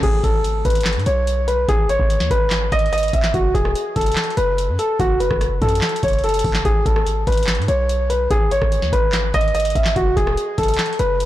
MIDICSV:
0, 0, Header, 1, 4, 480
1, 0, Start_track
1, 0, Tempo, 413793
1, 35, Time_signature, 4, 2, 24, 8
1, 13056, End_track
2, 0, Start_track
2, 0, Title_t, "Grand piano"
2, 0, Program_c, 0, 0
2, 37, Note_on_c, 0, 68, 87
2, 247, Note_off_c, 0, 68, 0
2, 275, Note_on_c, 0, 69, 75
2, 726, Note_off_c, 0, 69, 0
2, 755, Note_on_c, 0, 71, 79
2, 1206, Note_off_c, 0, 71, 0
2, 1232, Note_on_c, 0, 73, 73
2, 1684, Note_off_c, 0, 73, 0
2, 1713, Note_on_c, 0, 71, 76
2, 1924, Note_off_c, 0, 71, 0
2, 1957, Note_on_c, 0, 68, 91
2, 2167, Note_off_c, 0, 68, 0
2, 2197, Note_on_c, 0, 73, 87
2, 2647, Note_off_c, 0, 73, 0
2, 2677, Note_on_c, 0, 71, 91
2, 3127, Note_off_c, 0, 71, 0
2, 3159, Note_on_c, 0, 75, 97
2, 3368, Note_off_c, 0, 75, 0
2, 3394, Note_on_c, 0, 75, 89
2, 3605, Note_off_c, 0, 75, 0
2, 3641, Note_on_c, 0, 76, 79
2, 3849, Note_off_c, 0, 76, 0
2, 3876, Note_on_c, 0, 66, 85
2, 4086, Note_off_c, 0, 66, 0
2, 4110, Note_on_c, 0, 68, 80
2, 4563, Note_off_c, 0, 68, 0
2, 4592, Note_on_c, 0, 69, 79
2, 5044, Note_off_c, 0, 69, 0
2, 5070, Note_on_c, 0, 71, 87
2, 5523, Note_off_c, 0, 71, 0
2, 5554, Note_on_c, 0, 69, 78
2, 5765, Note_off_c, 0, 69, 0
2, 5796, Note_on_c, 0, 66, 94
2, 6006, Note_off_c, 0, 66, 0
2, 6032, Note_on_c, 0, 71, 76
2, 6485, Note_off_c, 0, 71, 0
2, 6517, Note_on_c, 0, 69, 83
2, 6967, Note_off_c, 0, 69, 0
2, 6999, Note_on_c, 0, 73, 72
2, 7208, Note_off_c, 0, 73, 0
2, 7237, Note_on_c, 0, 69, 81
2, 7687, Note_off_c, 0, 69, 0
2, 7717, Note_on_c, 0, 68, 89
2, 7927, Note_off_c, 0, 68, 0
2, 7954, Note_on_c, 0, 69, 76
2, 8406, Note_off_c, 0, 69, 0
2, 8436, Note_on_c, 0, 71, 79
2, 8887, Note_off_c, 0, 71, 0
2, 8912, Note_on_c, 0, 73, 75
2, 9364, Note_off_c, 0, 73, 0
2, 9392, Note_on_c, 0, 71, 73
2, 9604, Note_off_c, 0, 71, 0
2, 9637, Note_on_c, 0, 68, 89
2, 9847, Note_off_c, 0, 68, 0
2, 9877, Note_on_c, 0, 73, 88
2, 10327, Note_off_c, 0, 73, 0
2, 10355, Note_on_c, 0, 71, 91
2, 10806, Note_off_c, 0, 71, 0
2, 10837, Note_on_c, 0, 75, 99
2, 11047, Note_off_c, 0, 75, 0
2, 11073, Note_on_c, 0, 75, 84
2, 11284, Note_off_c, 0, 75, 0
2, 11319, Note_on_c, 0, 76, 79
2, 11528, Note_off_c, 0, 76, 0
2, 11554, Note_on_c, 0, 66, 90
2, 11765, Note_off_c, 0, 66, 0
2, 11790, Note_on_c, 0, 68, 81
2, 12243, Note_off_c, 0, 68, 0
2, 12272, Note_on_c, 0, 69, 82
2, 12724, Note_off_c, 0, 69, 0
2, 12752, Note_on_c, 0, 71, 87
2, 13056, Note_off_c, 0, 71, 0
2, 13056, End_track
3, 0, Start_track
3, 0, Title_t, "808-style bass"
3, 0, Program_c, 1, 38
3, 34, Note_on_c, 1, 32, 113
3, 265, Note_off_c, 1, 32, 0
3, 274, Note_on_c, 1, 32, 104
3, 735, Note_off_c, 1, 32, 0
3, 755, Note_on_c, 1, 32, 108
3, 1116, Note_on_c, 1, 44, 95
3, 1133, Note_off_c, 1, 32, 0
3, 1229, Note_off_c, 1, 44, 0
3, 1235, Note_on_c, 1, 35, 107
3, 1926, Note_off_c, 1, 35, 0
3, 1955, Note_on_c, 1, 32, 111
3, 2300, Note_off_c, 1, 32, 0
3, 2314, Note_on_c, 1, 32, 113
3, 2556, Note_on_c, 1, 39, 102
3, 2573, Note_off_c, 1, 32, 0
3, 2669, Note_off_c, 1, 39, 0
3, 2675, Note_on_c, 1, 32, 100
3, 3136, Note_off_c, 1, 32, 0
3, 3156, Note_on_c, 1, 32, 103
3, 3616, Note_off_c, 1, 32, 0
3, 3635, Note_on_c, 1, 32, 106
3, 3865, Note_off_c, 1, 32, 0
3, 3874, Note_on_c, 1, 30, 111
3, 4105, Note_off_c, 1, 30, 0
3, 4113, Note_on_c, 1, 28, 104
3, 4344, Note_off_c, 1, 28, 0
3, 4595, Note_on_c, 1, 30, 101
3, 4825, Note_off_c, 1, 30, 0
3, 5074, Note_on_c, 1, 30, 106
3, 5435, Note_on_c, 1, 42, 100
3, 5453, Note_off_c, 1, 30, 0
3, 5549, Note_off_c, 1, 42, 0
3, 5795, Note_on_c, 1, 30, 110
3, 6140, Note_off_c, 1, 30, 0
3, 6155, Note_on_c, 1, 30, 101
3, 6501, Note_off_c, 1, 30, 0
3, 6515, Note_on_c, 1, 42, 102
3, 6745, Note_off_c, 1, 42, 0
3, 6996, Note_on_c, 1, 30, 103
3, 7456, Note_off_c, 1, 30, 0
3, 7475, Note_on_c, 1, 30, 104
3, 7705, Note_off_c, 1, 30, 0
3, 7714, Note_on_c, 1, 32, 112
3, 7945, Note_off_c, 1, 32, 0
3, 7954, Note_on_c, 1, 32, 103
3, 8415, Note_off_c, 1, 32, 0
3, 8435, Note_on_c, 1, 32, 109
3, 8796, Note_on_c, 1, 44, 101
3, 8813, Note_off_c, 1, 32, 0
3, 8907, Note_off_c, 1, 44, 0
3, 8914, Note_on_c, 1, 35, 104
3, 9605, Note_off_c, 1, 35, 0
3, 9634, Note_on_c, 1, 32, 113
3, 9980, Note_off_c, 1, 32, 0
3, 9995, Note_on_c, 1, 32, 113
3, 10235, Note_on_c, 1, 39, 95
3, 10252, Note_off_c, 1, 32, 0
3, 10349, Note_off_c, 1, 39, 0
3, 10355, Note_on_c, 1, 32, 102
3, 10815, Note_off_c, 1, 32, 0
3, 10835, Note_on_c, 1, 32, 104
3, 11296, Note_off_c, 1, 32, 0
3, 11314, Note_on_c, 1, 32, 104
3, 11545, Note_off_c, 1, 32, 0
3, 11554, Note_on_c, 1, 30, 113
3, 11785, Note_off_c, 1, 30, 0
3, 11793, Note_on_c, 1, 28, 107
3, 12024, Note_off_c, 1, 28, 0
3, 12274, Note_on_c, 1, 30, 104
3, 12505, Note_off_c, 1, 30, 0
3, 12755, Note_on_c, 1, 30, 109
3, 13056, Note_off_c, 1, 30, 0
3, 13056, End_track
4, 0, Start_track
4, 0, Title_t, "Drums"
4, 34, Note_on_c, 9, 36, 122
4, 34, Note_on_c, 9, 49, 95
4, 35, Note_on_c, 9, 42, 73
4, 150, Note_off_c, 9, 36, 0
4, 150, Note_off_c, 9, 49, 0
4, 151, Note_off_c, 9, 42, 0
4, 274, Note_on_c, 9, 36, 92
4, 277, Note_on_c, 9, 42, 70
4, 390, Note_off_c, 9, 36, 0
4, 393, Note_off_c, 9, 42, 0
4, 515, Note_on_c, 9, 42, 84
4, 631, Note_off_c, 9, 42, 0
4, 755, Note_on_c, 9, 36, 89
4, 755, Note_on_c, 9, 42, 73
4, 815, Note_off_c, 9, 42, 0
4, 815, Note_on_c, 9, 42, 69
4, 871, Note_off_c, 9, 36, 0
4, 874, Note_off_c, 9, 42, 0
4, 874, Note_on_c, 9, 42, 71
4, 934, Note_off_c, 9, 42, 0
4, 934, Note_on_c, 9, 42, 72
4, 985, Note_on_c, 9, 39, 89
4, 994, Note_off_c, 9, 42, 0
4, 994, Note_on_c, 9, 38, 115
4, 994, Note_on_c, 9, 42, 72
4, 1074, Note_off_c, 9, 42, 0
4, 1074, Note_on_c, 9, 42, 55
4, 1101, Note_off_c, 9, 39, 0
4, 1110, Note_off_c, 9, 38, 0
4, 1154, Note_off_c, 9, 42, 0
4, 1154, Note_on_c, 9, 42, 43
4, 1231, Note_off_c, 9, 42, 0
4, 1231, Note_on_c, 9, 42, 68
4, 1347, Note_off_c, 9, 42, 0
4, 1476, Note_on_c, 9, 42, 80
4, 1592, Note_off_c, 9, 42, 0
4, 1716, Note_on_c, 9, 42, 69
4, 1832, Note_off_c, 9, 42, 0
4, 1954, Note_on_c, 9, 36, 121
4, 1955, Note_on_c, 9, 42, 74
4, 2070, Note_off_c, 9, 36, 0
4, 2071, Note_off_c, 9, 42, 0
4, 2197, Note_on_c, 9, 42, 71
4, 2313, Note_off_c, 9, 42, 0
4, 2315, Note_on_c, 9, 36, 96
4, 2431, Note_off_c, 9, 36, 0
4, 2436, Note_on_c, 9, 42, 83
4, 2552, Note_off_c, 9, 42, 0
4, 2556, Note_on_c, 9, 38, 72
4, 2672, Note_off_c, 9, 38, 0
4, 2675, Note_on_c, 9, 36, 91
4, 2678, Note_on_c, 9, 42, 85
4, 2791, Note_off_c, 9, 36, 0
4, 2794, Note_off_c, 9, 42, 0
4, 2906, Note_on_c, 9, 39, 90
4, 2912, Note_on_c, 9, 42, 72
4, 2915, Note_on_c, 9, 38, 118
4, 3022, Note_off_c, 9, 39, 0
4, 3028, Note_off_c, 9, 42, 0
4, 3031, Note_off_c, 9, 38, 0
4, 3155, Note_on_c, 9, 42, 69
4, 3156, Note_on_c, 9, 36, 102
4, 3236, Note_off_c, 9, 42, 0
4, 3236, Note_on_c, 9, 42, 53
4, 3272, Note_off_c, 9, 36, 0
4, 3315, Note_off_c, 9, 42, 0
4, 3315, Note_on_c, 9, 42, 41
4, 3394, Note_off_c, 9, 42, 0
4, 3394, Note_on_c, 9, 42, 83
4, 3454, Note_off_c, 9, 42, 0
4, 3454, Note_on_c, 9, 42, 73
4, 3514, Note_off_c, 9, 42, 0
4, 3514, Note_on_c, 9, 42, 61
4, 3574, Note_off_c, 9, 42, 0
4, 3574, Note_on_c, 9, 42, 51
4, 3635, Note_off_c, 9, 42, 0
4, 3635, Note_on_c, 9, 36, 88
4, 3635, Note_on_c, 9, 42, 71
4, 3745, Note_on_c, 9, 39, 75
4, 3751, Note_off_c, 9, 36, 0
4, 3751, Note_off_c, 9, 42, 0
4, 3754, Note_on_c, 9, 38, 96
4, 3861, Note_off_c, 9, 39, 0
4, 3870, Note_off_c, 9, 38, 0
4, 3874, Note_on_c, 9, 36, 117
4, 3874, Note_on_c, 9, 42, 73
4, 3990, Note_off_c, 9, 36, 0
4, 3990, Note_off_c, 9, 42, 0
4, 4114, Note_on_c, 9, 36, 94
4, 4116, Note_on_c, 9, 42, 72
4, 4230, Note_off_c, 9, 36, 0
4, 4232, Note_off_c, 9, 42, 0
4, 4235, Note_on_c, 9, 37, 91
4, 4351, Note_off_c, 9, 37, 0
4, 4355, Note_on_c, 9, 42, 85
4, 4471, Note_off_c, 9, 42, 0
4, 4594, Note_on_c, 9, 36, 90
4, 4594, Note_on_c, 9, 42, 70
4, 4654, Note_off_c, 9, 42, 0
4, 4654, Note_on_c, 9, 42, 70
4, 4710, Note_off_c, 9, 36, 0
4, 4714, Note_off_c, 9, 42, 0
4, 4714, Note_on_c, 9, 42, 71
4, 4774, Note_off_c, 9, 42, 0
4, 4774, Note_on_c, 9, 42, 67
4, 4824, Note_on_c, 9, 39, 91
4, 4834, Note_off_c, 9, 42, 0
4, 4834, Note_on_c, 9, 38, 115
4, 4834, Note_on_c, 9, 42, 72
4, 4914, Note_off_c, 9, 42, 0
4, 4914, Note_on_c, 9, 42, 55
4, 4940, Note_off_c, 9, 39, 0
4, 4950, Note_off_c, 9, 38, 0
4, 4993, Note_off_c, 9, 42, 0
4, 4993, Note_on_c, 9, 42, 41
4, 5071, Note_off_c, 9, 42, 0
4, 5071, Note_on_c, 9, 42, 66
4, 5187, Note_off_c, 9, 42, 0
4, 5316, Note_on_c, 9, 42, 78
4, 5432, Note_off_c, 9, 42, 0
4, 5556, Note_on_c, 9, 42, 70
4, 5672, Note_off_c, 9, 42, 0
4, 5795, Note_on_c, 9, 36, 117
4, 5795, Note_on_c, 9, 42, 70
4, 5911, Note_off_c, 9, 36, 0
4, 5911, Note_off_c, 9, 42, 0
4, 6036, Note_on_c, 9, 42, 74
4, 6152, Note_off_c, 9, 42, 0
4, 6155, Note_on_c, 9, 36, 93
4, 6155, Note_on_c, 9, 37, 92
4, 6271, Note_off_c, 9, 36, 0
4, 6271, Note_off_c, 9, 37, 0
4, 6275, Note_on_c, 9, 37, 69
4, 6275, Note_on_c, 9, 42, 83
4, 6391, Note_off_c, 9, 37, 0
4, 6391, Note_off_c, 9, 42, 0
4, 6514, Note_on_c, 9, 36, 92
4, 6514, Note_on_c, 9, 42, 50
4, 6595, Note_off_c, 9, 42, 0
4, 6595, Note_on_c, 9, 42, 66
4, 6630, Note_off_c, 9, 36, 0
4, 6674, Note_off_c, 9, 42, 0
4, 6674, Note_on_c, 9, 42, 87
4, 6744, Note_on_c, 9, 39, 92
4, 6754, Note_off_c, 9, 42, 0
4, 6754, Note_on_c, 9, 38, 119
4, 6754, Note_on_c, 9, 42, 43
4, 6834, Note_off_c, 9, 42, 0
4, 6834, Note_on_c, 9, 42, 58
4, 6860, Note_off_c, 9, 39, 0
4, 6870, Note_off_c, 9, 38, 0
4, 6914, Note_off_c, 9, 42, 0
4, 6914, Note_on_c, 9, 42, 72
4, 6994, Note_off_c, 9, 42, 0
4, 6994, Note_on_c, 9, 42, 68
4, 6995, Note_on_c, 9, 36, 101
4, 7054, Note_off_c, 9, 42, 0
4, 7054, Note_on_c, 9, 42, 61
4, 7111, Note_off_c, 9, 36, 0
4, 7113, Note_off_c, 9, 42, 0
4, 7113, Note_on_c, 9, 42, 49
4, 7174, Note_off_c, 9, 42, 0
4, 7174, Note_on_c, 9, 42, 40
4, 7234, Note_off_c, 9, 42, 0
4, 7234, Note_on_c, 9, 42, 51
4, 7295, Note_off_c, 9, 42, 0
4, 7295, Note_on_c, 9, 42, 62
4, 7353, Note_off_c, 9, 42, 0
4, 7353, Note_on_c, 9, 42, 75
4, 7414, Note_off_c, 9, 42, 0
4, 7414, Note_on_c, 9, 42, 88
4, 7475, Note_on_c, 9, 36, 92
4, 7475, Note_on_c, 9, 46, 51
4, 7530, Note_off_c, 9, 42, 0
4, 7584, Note_on_c, 9, 39, 77
4, 7591, Note_off_c, 9, 36, 0
4, 7591, Note_off_c, 9, 46, 0
4, 7593, Note_on_c, 9, 38, 98
4, 7700, Note_off_c, 9, 39, 0
4, 7709, Note_off_c, 9, 38, 0
4, 7714, Note_on_c, 9, 36, 117
4, 7715, Note_on_c, 9, 42, 73
4, 7830, Note_off_c, 9, 36, 0
4, 7831, Note_off_c, 9, 42, 0
4, 7954, Note_on_c, 9, 36, 94
4, 7957, Note_on_c, 9, 42, 72
4, 8070, Note_off_c, 9, 36, 0
4, 8073, Note_off_c, 9, 42, 0
4, 8075, Note_on_c, 9, 37, 91
4, 8191, Note_off_c, 9, 37, 0
4, 8195, Note_on_c, 9, 42, 84
4, 8311, Note_off_c, 9, 42, 0
4, 8435, Note_on_c, 9, 36, 92
4, 8435, Note_on_c, 9, 42, 69
4, 8495, Note_off_c, 9, 42, 0
4, 8495, Note_on_c, 9, 42, 73
4, 8551, Note_off_c, 9, 36, 0
4, 8555, Note_off_c, 9, 42, 0
4, 8555, Note_on_c, 9, 42, 69
4, 8614, Note_off_c, 9, 42, 0
4, 8614, Note_on_c, 9, 42, 70
4, 8666, Note_on_c, 9, 39, 90
4, 8675, Note_off_c, 9, 42, 0
4, 8675, Note_on_c, 9, 38, 113
4, 8675, Note_on_c, 9, 42, 72
4, 8755, Note_off_c, 9, 42, 0
4, 8755, Note_on_c, 9, 42, 56
4, 8782, Note_off_c, 9, 39, 0
4, 8791, Note_off_c, 9, 38, 0
4, 8835, Note_off_c, 9, 42, 0
4, 8835, Note_on_c, 9, 42, 42
4, 8912, Note_off_c, 9, 42, 0
4, 8912, Note_on_c, 9, 42, 65
4, 9028, Note_off_c, 9, 42, 0
4, 9157, Note_on_c, 9, 42, 81
4, 9273, Note_off_c, 9, 42, 0
4, 9396, Note_on_c, 9, 42, 69
4, 9512, Note_off_c, 9, 42, 0
4, 9634, Note_on_c, 9, 36, 119
4, 9635, Note_on_c, 9, 42, 75
4, 9750, Note_off_c, 9, 36, 0
4, 9751, Note_off_c, 9, 42, 0
4, 9876, Note_on_c, 9, 42, 72
4, 9992, Note_off_c, 9, 42, 0
4, 9995, Note_on_c, 9, 36, 94
4, 9995, Note_on_c, 9, 37, 95
4, 10111, Note_off_c, 9, 36, 0
4, 10111, Note_off_c, 9, 37, 0
4, 10115, Note_on_c, 9, 42, 83
4, 10231, Note_off_c, 9, 42, 0
4, 10235, Note_on_c, 9, 38, 68
4, 10351, Note_off_c, 9, 38, 0
4, 10355, Note_on_c, 9, 36, 91
4, 10358, Note_on_c, 9, 42, 81
4, 10471, Note_off_c, 9, 36, 0
4, 10474, Note_off_c, 9, 42, 0
4, 10585, Note_on_c, 9, 39, 93
4, 10591, Note_on_c, 9, 42, 72
4, 10594, Note_on_c, 9, 38, 117
4, 10701, Note_off_c, 9, 39, 0
4, 10707, Note_off_c, 9, 42, 0
4, 10710, Note_off_c, 9, 38, 0
4, 10834, Note_on_c, 9, 42, 69
4, 10835, Note_on_c, 9, 36, 101
4, 10914, Note_off_c, 9, 42, 0
4, 10914, Note_on_c, 9, 42, 54
4, 10951, Note_off_c, 9, 36, 0
4, 10993, Note_off_c, 9, 42, 0
4, 10993, Note_on_c, 9, 42, 40
4, 11073, Note_off_c, 9, 42, 0
4, 11073, Note_on_c, 9, 42, 84
4, 11133, Note_off_c, 9, 42, 0
4, 11133, Note_on_c, 9, 42, 70
4, 11194, Note_off_c, 9, 42, 0
4, 11194, Note_on_c, 9, 42, 64
4, 11254, Note_off_c, 9, 42, 0
4, 11254, Note_on_c, 9, 42, 49
4, 11315, Note_off_c, 9, 42, 0
4, 11315, Note_on_c, 9, 36, 90
4, 11315, Note_on_c, 9, 42, 68
4, 11424, Note_on_c, 9, 39, 78
4, 11431, Note_off_c, 9, 36, 0
4, 11431, Note_off_c, 9, 42, 0
4, 11433, Note_on_c, 9, 38, 97
4, 11540, Note_off_c, 9, 39, 0
4, 11549, Note_off_c, 9, 38, 0
4, 11554, Note_on_c, 9, 36, 117
4, 11554, Note_on_c, 9, 42, 74
4, 11670, Note_off_c, 9, 36, 0
4, 11670, Note_off_c, 9, 42, 0
4, 11793, Note_on_c, 9, 36, 92
4, 11795, Note_on_c, 9, 42, 74
4, 11909, Note_off_c, 9, 36, 0
4, 11911, Note_off_c, 9, 42, 0
4, 11914, Note_on_c, 9, 37, 96
4, 12030, Note_off_c, 9, 37, 0
4, 12034, Note_on_c, 9, 42, 80
4, 12150, Note_off_c, 9, 42, 0
4, 12273, Note_on_c, 9, 42, 72
4, 12274, Note_on_c, 9, 36, 88
4, 12334, Note_off_c, 9, 42, 0
4, 12334, Note_on_c, 9, 42, 70
4, 12390, Note_off_c, 9, 36, 0
4, 12394, Note_off_c, 9, 42, 0
4, 12394, Note_on_c, 9, 42, 69
4, 12454, Note_off_c, 9, 42, 0
4, 12454, Note_on_c, 9, 42, 71
4, 12505, Note_on_c, 9, 39, 92
4, 12514, Note_off_c, 9, 42, 0
4, 12514, Note_on_c, 9, 38, 116
4, 12514, Note_on_c, 9, 42, 72
4, 12594, Note_off_c, 9, 42, 0
4, 12594, Note_on_c, 9, 42, 56
4, 12621, Note_off_c, 9, 39, 0
4, 12630, Note_off_c, 9, 38, 0
4, 12675, Note_off_c, 9, 42, 0
4, 12675, Note_on_c, 9, 42, 44
4, 12752, Note_off_c, 9, 42, 0
4, 12752, Note_on_c, 9, 42, 67
4, 12868, Note_off_c, 9, 42, 0
4, 12995, Note_on_c, 9, 42, 81
4, 13056, Note_off_c, 9, 42, 0
4, 13056, End_track
0, 0, End_of_file